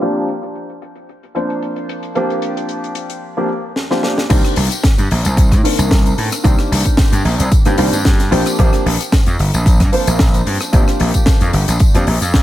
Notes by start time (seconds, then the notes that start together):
0.01 F3 A#3 C4 D4 G4, closed hi-hat
0.16 closed hi-hat
0.28 closed hi-hat
0.43 closed hi-hat
0.55 closed hi-hat
0.69 closed hi-hat
0.82 closed hi-hat
0.95 closed hi-hat
1.09 closed hi-hat
1.23 closed hi-hat
1.34 F3 A#3 C4 D4 C5, closed hi-hat
1.50 closed hi-hat
1.62 closed hi-hat
1.76 closed hi-hat
1.89 closed hi-hat
2.03 closed hi-hat
2.15 F3 A#3 C4 D4 G4, closed hi-hat
2.30 closed hi-hat
2.42 closed hi-hat
2.57 closed hi-hat
2.69 closed hi-hat
2.84 closed hi-hat
2.95 closed hi-hat
3.10 closed hi-hat
3.37 F3 A#3 C4 D4 G4
3.76 snare
3.90 F3 A#3 C4 D4 G4, snare
4.03 F3 A#3 C4 D4 G4, snare
4.18 snare
4.29 C2 D#3 A#3 C4 D4 G4, kick, closed hi-hat, crash, tambourine
4.45 cross-stick, closed hi-hat, tambourine
4.56 C2, open hi-hat
4.71 closed hi-hat, tambourine
4.83 kick, snare, closed hi-hat, tambourine
4.98 G2, closed hi-hat, tambourine
5.11 A#1, open hi-hat
5.25 C2, closed hi-hat, tambourine
5.37 kick, closed hi-hat, tambourine
5.51 A2, kick, cross-stick, closed hi-hat, tambourine
5.63 D#3 A#3 C4 D4 A#4, open hi-hat
5.78 C2, closed hi-hat, tambourine
5.91 kick, snare, closed hi-hat, tambourine
6.06 closed hi-hat, tambourine
6.18 A2, open hi-hat
6.32 cross-stick, closed hi-hat, tambourine
6.44 C2 D#3 A#3 C4 D4 G4, kick, closed hi-hat, tambourine
6.59 cross-stick, closed hi-hat, tambourine
6.71 C2, open hi-hat
6.85 kick, closed hi-hat, tambourine
6.97 kick, snare, closed hi-hat, tambourine
7.12 G2, closed hi-hat, tambourine
7.25 A#1, open hi-hat
7.39 C2, closed hi-hat, tambourine
7.51 kick, closed hi-hat, tambourine
7.65 G2 D#3 A#3 C4 D4 G4, cross-stick, closed hi-hat, tambourine
7.78 C2 D#3 A#3 C4 D4 G4, open hi-hat
7.92 G2, closed hi-hat, tambourine
8.05 kick, snare, closed hi-hat, tambourine
8.19 snare, closed hi-hat, tambourine
8.31 A#1 F3 A#3 C4 D4 G4, open hi-hat
8.46 cross-stick, closed hi-hat, tambourine
8.59 A#1 F3 A#3 C4 D4 G4, kick, closed hi-hat, tambourine
8.73 cross-stick, closed hi-hat, tambourine
8.86 A#1, open hi-hat
9.00 closed hi-hat, tambourine
9.12 kick, snare, closed hi-hat, tambourine
9.26 F2, closed hi-hat, tambourine
9.39 G1, open hi-hat
9.54 A#1, closed hi-hat, tambourine
9.66 kick, closed hi-hat, tambourine
9.80 G2, kick, cross-stick, closed hi-hat, tambourine
9.92 F3 A#3 C4 D4 C5, open hi-hat
10.07 A#1, closed hi-hat, tambourine
10.19 kick, snare, closed hi-hat, tambourine
10.34 closed hi-hat, tambourine
10.46 G2, open hi-hat
10.60 cross-stick, closed hi-hat, tambourine
10.72 A#1 F3 A#3 C4 D4 G4, kick, closed hi-hat, tambourine
10.88 cross-stick, closed hi-hat, tambourine
11.00 A#1, open hi-hat
11.14 kick, closed hi-hat, tambourine
11.26 kick, snare, closed hi-hat, tambourine
11.41 F2, closed hi-hat, tambourine
11.53 G1, open hi-hat
11.68 A#1, closed hi-hat, tambourine
11.80 kick, closed hi-hat, tambourine
11.94 F2 F3 A#3 C4 D4 G4, cross-stick, closed hi-hat, tambourine
12.07 A#1, open hi-hat
12.21 F2, closed hi-hat, tambourine
12.34 kick, snare, closed hi-hat